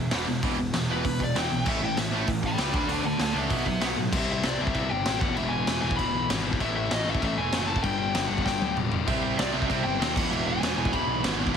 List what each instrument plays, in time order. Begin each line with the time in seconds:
Already playing: overdriven electric guitar B2
0.11 picked electric bass E1, overdriven electric guitar E2 B2 E3, snare, open hi-hat
0.27 picked electric bass E1, overdriven electric guitar E2 B2
0.43 picked electric bass E1, overdriven electric guitar E2 B2 E3, kick, open hi-hat
0.58 picked electric bass E1, overdriven electric guitar E2 B2
0.73 picked electric bass E1, overdriven electric guitar E2 B2, snare, open hi-hat
0.89 picked electric bass E1, overdriven electric guitar E2 B2 E3, lead electric guitar B4
1.04 picked electric bass E1, overdriven electric guitar E2 B2, kick, open hi-hat
1.19 picked electric bass E1, overdriven electric guitar E2 B2, kick
1.23 lead electric guitar D5
1.34 picked electric bass E1, overdriven electric guitar E2 B2 E3, snare, open hi-hat
1.38 lead electric guitar G5
1.50 picked electric bass B1, overdriven electric guitar E2 B2
1.64 picked electric bass A1, overdriven electric guitar A2 E3 A3, kick, crash
1.69 lead electric guitar E5
1.81 picked electric bass A1, overdriven electric guitar A2 E3, lead electric guitar G5
1.97 picked electric bass A1, overdriven electric guitar A2 E3, lead electric guitar E5, snare, open hi-hat
2.11 picked electric bass A1, overdriven electric guitar A2 E3 A3
2.26 picked electric bass A1, overdriven electric guitar A2 E3, kick, open hi-hat
2.43 picked electric bass A1, overdriven electric guitar A2 E3, lead electric guitar G5, kick
2.47 lead electric guitar B5
2.57 picked electric bass C#2, overdriven electric guitar A2 E3 A3, lead electric guitar G5 B5, snare, open hi-hat
2.72 picked electric bass D2, overdriven electric guitar D3 A3 D4, lead electric guitar D5 B5, kick
2.87 picked electric bass D2, overdriven electric guitar D3 A3 D4, open hi-hat
2.92 lead electric guitar F#5 A5
3.02 picked electric bass D2, overdriven electric guitar D3 A3, lead electric guitar F#5
3.06 lead electric guitar A5
3.18 picked electric bass D2, overdriven electric guitar D3 A3, snare, open hi-hat
3.22 lead electric guitar F#5 A5
3.33 picked electric bass C#2, overdriven electric guitar D3 A3 D4
3.37 lead electric guitar B4 E5
3.49 picked electric bass B1, overdriven electric guitar B2 F#3 B3, kick, open hi-hat
3.53 lead electric guitar G4 E5
3.65 picked electric bass B1, overdriven electric guitar B2 F#3, lead electric guitar G4 E5, kick
3.81 picked electric bass B1, overdriven electric guitar B2 F#3 B3, lead electric guitar F#5, snare, open hi-hat
3.96 picked electric bass A2, overdriven electric guitar B2 F#3
4.12 picked electric bass C2, overdriven electric guitar C3 G3 C4, kick, crash
4.17 lead electric guitar E5
4.32 lead electric guitar E5
4.43 picked electric bass C2, overdriven electric guitar C3 G3 C4, lead electric guitar D5, snare, crash
4.59 picked electric bass C2, overdriven electric guitar C3 G3 C4, lead electric guitar E5
4.67 kick
4.74 picked electric bass C2, overdriven electric guitar C3 G3 C4, lead electric guitar E5, kick, crash
4.89 picked electric bass G1, lead electric guitar G5
5.05 picked electric bass A1, overdriven electric guitar C3 G3 C4, snare, crash
5.20 picked electric bass E1, overdriven electric guitar E2 B2 E3, lead electric guitar F#5, kick
5.36 picked electric bass E1, overdriven electric guitar E2 B2 E3, lead electric guitar E5, crash
5.49 lead electric guitar G#5
5.67 picked electric bass E1, overdriven electric guitar E2 B2 E3, snare, crash
5.82 picked electric bass E1, overdriven electric guitar E2 B2 E3, lead electric guitar G#5
5.91 kick
5.96 picked electric bass E1, overdriven electric guitar B2 E3, lead electric guitar B5, kick, crash
6.01 overdriven electric guitar E2
6.13 picked electric bass B1
6.28 picked electric bass G#1, overdriven electric guitar E2 B2 E3, snare, crash
6.44 overdriven electric guitar E2 B2 E3
6.53 kick
6.60 picked electric bass A1, overdriven electric guitar A2 E3 A3, lead electric guitar E5, kick, crash
6.77 lead electric guitar E5
6.89 picked electric bass A1, overdriven electric guitar A2 E3 A3, snare, crash
6.93 lead electric guitar D#5
7.05 picked electric bass A1, overdriven electric guitar A2 E3 A3
7.09 lead electric guitar E5
7.15 kick
7.20 picked electric bass A1, overdriven electric guitar A2 E3 A3, kick, crash
7.24 lead electric guitar E5
7.37 picked electric bass E1, lead electric guitar G#5
7.52 picked electric bass F#1, overdriven electric guitar A2 E3 A3, snare, crash
7.63 overdriven electric guitar A3, lead electric guitar G#5 A5
7.68 overdriven electric guitar A2 E3
7.76 kick
7.82 picked electric bass G1, overdriven electric guitar G2 D3 G3, lead electric guitar G5, kick, crash
7.99 lead electric guitar G5
8.14 picked electric bass G1, overdriven electric guitar G2 D3 G3, snare, crash
8.27 picked electric bass G1, overdriven electric guitar G2 D3 G3, lead electric guitar F#5
8.38 kick
8.43 picked electric bass G1, overdriven electric guitar G2 D3 G3, lead electric guitar G5, kick, snare
8.61 picked electric bass D2, high tom
8.75 picked electric bass E1, overdriven electric guitar G2 D3 G3, mid tom
8.91 overdriven electric guitar G2 D3 G3, floor tom
9.05 picked electric bass C2, overdriven electric guitar C3 G3 C4, lead electric guitar E5, kick, splash, crash
9.23 lead electric guitar E5
9.37 picked electric bass C2, overdriven electric guitar C3 G3 C4, lead electric guitar D5, snare, crash
9.52 picked electric bass C2, overdriven electric guitar C3 G3 C4, lead electric guitar E5
9.62 kick
9.67 picked electric bass C2, overdriven electric guitar C3 G3 C4, lead electric guitar E5, kick, crash
9.83 picked electric bass G1, lead electric guitar G5
9.99 picked electric bass D#2, overdriven electric guitar C3 G3 C4, snare, crash
10.14 picked electric bass E1, overdriven electric guitar E2 B2 E3, lead electric guitar F#5, kick, crash
10.30 picked electric bass E1, overdriven electric guitar E2 B2 E3, lead electric guitar E5, crash
10.47 lead electric guitar G#5
10.61 picked electric bass E1, overdriven electric guitar E2 B2 E3, snare, crash
10.76 picked electric bass E1, overdriven electric guitar E2 B2 E3, lead electric guitar G#5
10.85 kick
10.92 picked electric bass E1, overdriven electric guitar E2 B2 E3, lead electric guitar B5, kick, crash
11.07 picked electric bass B1
11.23 picked electric bass G#1, overdriven electric guitar E2 B2 E3, snare, crash
11.39 overdriven electric guitar E2 B2 E3
11.47 kick
11.53 overdriven electric guitar A2, distorted electric guitar E3 A3